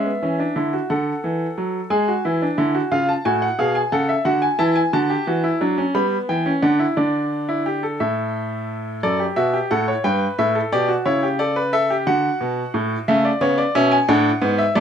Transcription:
Already playing: E5
0.05 B3
0.22 E3 C#4
0.39 D4
0.56 D3 E4
0.73 F#4
0.90 D3 A4 F#5
1.24 E3
1.58 F#3
1.90 G#3 G#4 G#5
2.08 F#4
2.25 E3 E4
2.42 D4
2.58 D3 E4
2.75 F#4
2.92 C#3 F4 F5
3.09 A5
3.25 A2 F#4 G#5
3.42 F#5
3.59 B2 G#4 F5
3.75 G#5
3.92 C#3 A4 F#5
4.09 E5
4.25 D3 F#4 F#5
4.42 G#5
4.59 E3 E4 A5
4.76 G#5
4.93 D3 F#4 A5
5.10 G4
5.27 E3 F#4
5.44 E4
5.61 F#3 D4
5.78 C#4
5.95 G3 B3 B5
6.29 E3 G5
6.46 C#4
6.62 D3 D4 F#5
6.79 E4
6.97 D3 D4 D5
7.49 E4
7.66 G4
7.83 A4
8.00 A2 E5
9.03 F#2 A4 D5
9.20 G4
9.36 B2 F#4 E5
9.53 G4
9.71 A2 A4 F#5
9.88 C#5
10.04 G2 B4 G5
10.39 A2 E5
10.55 A4
10.72 B2 G4 D5
10.88 F#4
11.06 C#3 E4 C#5
11.23 G4
11.39 A4 D5
11.56 B4
11.73 A4 E5
11.90 G4
12.07 D3 F#4 F#5
12.41 B2
12.74 A2
13.08 C#3 A3 E5
13.25 D5
13.41 C#3 B3 C#5
13.58 D5
13.75 B2 C#4 E5
13.91 G#5
14.08 A2 D4 F#5
14.41 G#2 B3
14.58 E5
14.75 F#2 A3 D5

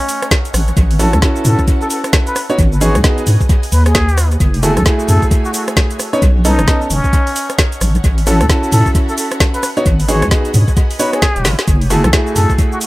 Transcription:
Already playing: A3 C#4 C#5 D#5 F#5
0.09 open hi-hat, shaker
0.22 cross-stick, closed hi-hat, shaker
0.31 kick, snare, shaker
0.45 closed hi-hat, shaker
0.54 A1 B4 E5, cross-stick, open hi-hat, shaker
0.68 closed hi-hat, shaker
0.77 A1, kick, closed hi-hat, shaker
0.91 open hi-hat
0.99 C#4 E4 F#4 A4, open hi-hat, shaker
1.13 E2 A4, cross-stick, closed hi-hat, shaker
1.22 C#4 E4 F#4 A4, kick, snare, shaker
1.36 shaker
1.45 A2 A4, open hi-hat, shaker
1.59 kick, shaker
1.68 kick, closed hi-hat, shaker
1.81 A4, shaker
1.90 A4, open hi-hat, shaker
2.04 cross-stick, closed hi-hat, shaker
2.13 kick, snare, shaker
2.27 B4, closed hi-hat, shaker
2.36 B4 D#5 G#5, cross-stick, open hi-hat, shaker
2.50 B3 D#4 F#4 C#5, closed hi-hat, shaker
2.59 G#1, kick, closed hi-hat, shaker
2.72 shaker
2.81 B3 D#4 F#4 G#4 C#5, open hi-hat, shaker
2.95 D#2, cross-stick, closed hi-hat, shaker
3.04 B3 D#4 F#4 G#4, kick, snare, shaker
3.18 closed hi-hat, shaker
3.27 G#2, open hi-hat, shaker
3.41 kick, shaker
3.49 kick, closed hi-hat, shaker
3.63 open hi-hat, shaker
3.72 D#2 B4, open hi-hat, shaker
3.86 G#4, cross-stick, closed hi-hat, shaker
3.95 kick, snare, shaker
4.09 closed hi-hat, shaker
4.18 cross-stick, open hi-hat, shaker
4.31 closed hi-hat, shaker
4.40 F#1 C#5 E5 G#5, kick, closed hi-hat, shaker
4.54 open hi-hat
4.63 A3 E4 F#4 G#4 A4, open hi-hat, shaker
4.77 C#2 A4, cross-stick, closed hi-hat, shaker
4.86 A3 E4 F#4 G#4, kick, snare, shaker
5.00 shaker
5.08 F#2 A4, open hi-hat, shaker
5.22 kick, shaker
5.31 kick, closed hi-hat, shaker
5.45 F#4, shaker
5.54 F#4, open hi-hat, shaker
5.68 cross-stick, closed hi-hat, shaker
5.77 kick, snare, shaker
5.91 closed hi-hat, shaker
5.99 D#5 F#5, cross-stick, open hi-hat, shaker
6.13 B3 C#4 D#4 C#5, closed hi-hat, shaker
6.22 B1, kick, closed hi-hat, shaker
6.45 B3 C#4 D#4 A4, open hi-hat, shaker
6.59 F#1, cross-stick, closed hi-hat, shaker
6.68 B3 C#4 D#4 A4, kick, snare, shaker
6.82 shaker
6.90 F#1 C#4, open hi-hat, shaker
7.04 kick, shaker
7.13 kick, closed hi-hat, shaker
7.27 open hi-hat, shaker
7.36 open hi-hat, shaker
7.50 cross-stick, closed hi-hat, shaker
7.58 kick, snare, shaker
7.72 closed hi-hat, shaker
7.81 A1 E5 B5, cross-stick, open hi-hat, shaker
7.95 closed hi-hat, shaker
8.04 A1, kick, closed hi-hat, shaker
8.18 open hi-hat
8.27 C#4 E4 F#4 A4, open hi-hat, shaker
8.41 E2 A4, cross-stick, closed hi-hat, shaker
8.49 C#4 E4 F#4 A4, kick, snare, shaker
8.63 shaker
8.72 A2 A4, open hi-hat, shaker
8.86 kick, shaker
8.95 kick, closed hi-hat, shaker
9.09 A4, shaker
9.18 A4, open hi-hat, shaker
9.32 cross-stick, closed hi-hat, shaker
9.40 kick, snare, shaker
9.54 B4, closed hi-hat, shaker
9.63 D#5 G#5 B5, cross-stick, open hi-hat, shaker
9.77 B3 D#4 F#4 C#5, closed hi-hat, shaker
9.86 G#1, kick, closed hi-hat, shaker
10.00 open hi-hat, shaker
10.08 B3 D#4 F#4 G#4 C#5, open hi-hat, shaker
10.22 D#2, cross-stick, closed hi-hat, shaker
10.31 B3 D#4 F#4 G#4, kick, snare, shaker
10.45 closed hi-hat, shaker
10.54 G#2, open hi-hat, shaker
10.68 kick, shaker
10.77 kick, closed hi-hat, shaker
10.91 open hi-hat, shaker
10.99 B3 D#4 F#4 B4 C#5, open hi-hat, shaker
11.13 G#4, cross-stick, closed hi-hat, shaker
11.22 kick, snare, shaker
11.36 D#1, closed hi-hat, shaker
11.45 G#1, snare, open hi-hat, shaker
11.59 snare, closed hi-hat, shaker
11.68 F#1 E5 C#6, kick, closed hi-hat, shaker
11.81 open hi-hat
11.90 A3 E4 F#4 G#4 A4, open hi-hat, shaker
12.04 C#2 A4, cross-stick, closed hi-hat, shaker
12.13 A3 E4 F#4 G#4, kick, snare, shaker
12.27 shaker
12.36 F#2 A4, open hi-hat, shaker
12.50 kick, shaker
12.59 kick, closed hi-hat, shaker
12.72 F#4, shaker
12.81 F#4, open hi-hat, shaker

